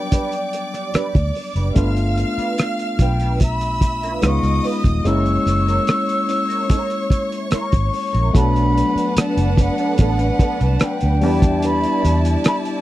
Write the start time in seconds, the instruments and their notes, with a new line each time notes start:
Already playing: tine electric piano F#3 G3 B3 D4, violin section D5 D6, flute G5
0.11 clean electric guitar D4 G4 B4, kick, closed hi-hat
0.32 closed hi-hat
0.53 muted clean electric guitar stroke, closed hi-hat
0.74 clean electric guitar D4 G4 D5, cross-stick, closed hi-hat
0.94 clean electric guitar D4 G4 B4, muted fingered electric bass stroke, cross-stick, closed hi-hat
1.15 fingered electric bass D2, kick, closed hi-hat
1.35 muted clean electric guitar stroke, open hi-hat
1.55 fingered electric bass F#1, clean electric guitar D4 G4 B4, closed hi-hat
1.74 fingered electric bass G1, tine electric piano A3 B3 D4 F4, clean electric guitar D4 F4 B4, violin section F5 F6, flute F5, kick, closed hi-hat
1.97 muted clean electric guitar stroke, closed hi-hat
2.18 muted clean electric guitar stroke, closed hi-hat
2.38 clean electric guitar D4 F4 B4, muted fingered electric bass stroke, closed hi-hat
2.58 cross-stick, closed hi-hat
2.79 muted clean electric guitar stroke, closed hi-hat
2.99 fingered electric bass B1, clean electric guitar D4 F4 B4, flute G5, kick, closed hi-hat
3.20 clean electric guitar D4 F4 B4, closed hi-hat
3.40 violin section E5 E6, flute B5, muted clean electric guitar stroke, kick, closed hi-hat
3.61 muted clean electric guitar stroke, closed hi-hat
3.81 kick, closed hi-hat
4.03 clean electric guitar D4 F4 B4, closed hi-hat
4.22 fingered electric bass C#2, tine electric piano G#3 B3 D#4 F4, clean electric guitar C#4 F4 B4, violin section D#5 D#6, cross-stick, closed hi-hat
4.26 flute C#6
4.43 fingered electric bass C#2, muted clean electric guitar stroke, closed hi-hat
4.64 clean electric guitar C#4 F4 B4, flute D#6, open hi-hat
4.84 fingered electric bass D#1, kick, closed hi-hat
5.04 fingered electric bass F#1, tine electric piano G#3 A#3 C#4 E4, clean electric guitar C#4 E4 A#4, violin section C#5 C#6, flute E6, closed hi-hat
5.26 closed hi-hat
5.46 fingered electric bass F#1, muted clean electric guitar stroke, closed hi-hat
5.67 clean electric guitar C#4 E4 A#4, closed hi-hat
5.87 muted clean electric guitar stroke, cross-stick, closed hi-hat
6.08 muted clean electric guitar stroke, closed hi-hat
6.28 clean electric guitar C#4 E4 C#5, closed hi-hat
6.49 clean electric guitar C#4 E4 A#4, closed hi-hat
6.68 clean electric guitar C#4 E4 A#4, kick, closed hi-hat
6.90 closed hi-hat
7.10 muted clean electric guitar stroke, kick, closed hi-hat
7.31 clean electric guitar C#4 E4 C#5, closed hi-hat
7.50 clean electric guitar C#4 E4 A#4, flute C#6, muted fingered electric bass stroke, cross-stick, closed hi-hat
7.72 fingered electric bass G#1, kick, closed hi-hat
7.93 muted clean electric guitar stroke, open hi-hat
8.13 fingered electric bass A#1, clean electric guitar C#4 E4 A#4, closed hi-hat
8.33 fingered electric bass B1, tine electric piano F#3 A3 B3 D4, clean electric guitar B3 D4 A4, violin section D4 B4 F#5, flute B5, kick, closed hi-hat
8.56 closed hi-hat
8.78 closed hi-hat
8.95 muted fingered electric bass stroke, muted clean electric guitar stroke, closed hi-hat
9.16 flute A5, muted fingered electric bass stroke, muted clean electric guitar stroke, cross-stick, closed hi-hat
9.37 fingered electric bass F#1, muted clean electric guitar stroke, closed hi-hat
9.58 clean electric guitar B3 D4 B4, flute F#5, kick, closed hi-hat
9.78 clean electric guitar B3 D4 A4, closed hi-hat
9.98 fingered electric bass A1, clean electric guitar B3 D4 A4, flute F#5, kick, closed hi-hat
10.19 muted clean electric guitar stroke, closed hi-hat
10.39 clean electric guitar B3 D4 A4, kick, closed hi-hat
10.60 fingered electric bass C2, flute A5, muted clean electric guitar stroke, cross-stick, closed hi-hat
10.80 flute G5, muted clean electric guitar stroke, cross-stick, closed hi-hat
11.01 fingered electric bass D2, muted clean electric guitar stroke, closed hi-hat
11.21 fingered electric bass E2, tine electric piano G3 B3 D4 G4, clean electric guitar D4 G4 B4, violin section E4 D5 A5, open hi-hat
11.42 muted clean electric guitar stroke, kick, closed hi-hat
11.62 clean electric guitar D4 G4 B4, flute B5, closed hi-hat
11.84 closed hi-hat
12.05 fingered electric bass E2, closed hi-hat
12.25 muted clean electric guitar stroke, closed hi-hat
12.44 flute B5, muted clean electric guitar stroke, cross-stick, closed hi-hat
12.65 muted clean electric guitar stroke, closed hi-hat